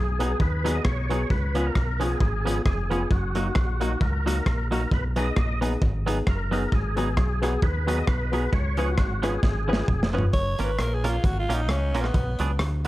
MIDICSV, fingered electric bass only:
0, 0, Header, 1, 2, 480
1, 0, Start_track
1, 0, Key_signature, 6, "major"
1, 0, Tempo, 451467
1, 1385, Time_signature, 4, 2, 24, 8
1, 13688, End_track
2, 0, Start_track
2, 0, Title_t, "Fingered electric bass"
2, 0, Program_c, 0, 33
2, 0, Note_on_c, 0, 35, 90
2, 357, Note_off_c, 0, 35, 0
2, 428, Note_on_c, 0, 39, 100
2, 835, Note_off_c, 0, 39, 0
2, 909, Note_on_c, 0, 35, 95
2, 1315, Note_off_c, 0, 35, 0
2, 1390, Note_on_c, 0, 37, 98
2, 1796, Note_off_c, 0, 37, 0
2, 1873, Note_on_c, 0, 35, 90
2, 2277, Note_off_c, 0, 35, 0
2, 2347, Note_on_c, 0, 32, 95
2, 2754, Note_off_c, 0, 32, 0
2, 2828, Note_on_c, 0, 29, 93
2, 3234, Note_off_c, 0, 29, 0
2, 3308, Note_on_c, 0, 30, 105
2, 3714, Note_off_c, 0, 30, 0
2, 3785, Note_on_c, 0, 34, 92
2, 4193, Note_off_c, 0, 34, 0
2, 4266, Note_on_c, 0, 37, 93
2, 4673, Note_off_c, 0, 37, 0
2, 4748, Note_on_c, 0, 34, 96
2, 5154, Note_off_c, 0, 34, 0
2, 5228, Note_on_c, 0, 35, 94
2, 5635, Note_off_c, 0, 35, 0
2, 5711, Note_on_c, 0, 34, 101
2, 6116, Note_off_c, 0, 34, 0
2, 6186, Note_on_c, 0, 32, 99
2, 6594, Note_off_c, 0, 32, 0
2, 6670, Note_on_c, 0, 30, 92
2, 7076, Note_off_c, 0, 30, 0
2, 7151, Note_on_c, 0, 32, 113
2, 7635, Note_off_c, 0, 32, 0
2, 7635, Note_on_c, 0, 35, 94
2, 8039, Note_off_c, 0, 35, 0
2, 8113, Note_on_c, 0, 39, 97
2, 8519, Note_off_c, 0, 39, 0
2, 8591, Note_on_c, 0, 35, 98
2, 8998, Note_off_c, 0, 35, 0
2, 9071, Note_on_c, 0, 37, 108
2, 9550, Note_on_c, 0, 32, 92
2, 9566, Note_off_c, 0, 37, 0
2, 9958, Note_off_c, 0, 32, 0
2, 10029, Note_on_c, 0, 32, 103
2, 10438, Note_off_c, 0, 32, 0
2, 10507, Note_on_c, 0, 29, 93
2, 10917, Note_off_c, 0, 29, 0
2, 10993, Note_on_c, 0, 30, 100
2, 11221, Note_off_c, 0, 30, 0
2, 11262, Note_on_c, 0, 32, 83
2, 11441, Note_off_c, 0, 32, 0
2, 11473, Note_on_c, 0, 34, 92
2, 11881, Note_off_c, 0, 34, 0
2, 11956, Note_on_c, 0, 32, 100
2, 12182, Note_off_c, 0, 32, 0
2, 12220, Note_on_c, 0, 34, 83
2, 12432, Note_off_c, 0, 34, 0
2, 12432, Note_on_c, 0, 37, 101
2, 12703, Note_off_c, 0, 37, 0
2, 12703, Note_on_c, 0, 34, 82
2, 12882, Note_off_c, 0, 34, 0
2, 12914, Note_on_c, 0, 35, 93
2, 13141, Note_off_c, 0, 35, 0
2, 13178, Note_on_c, 0, 37, 91
2, 13359, Note_off_c, 0, 37, 0
2, 13393, Note_on_c, 0, 38, 96
2, 13688, Note_off_c, 0, 38, 0
2, 13688, End_track
0, 0, End_of_file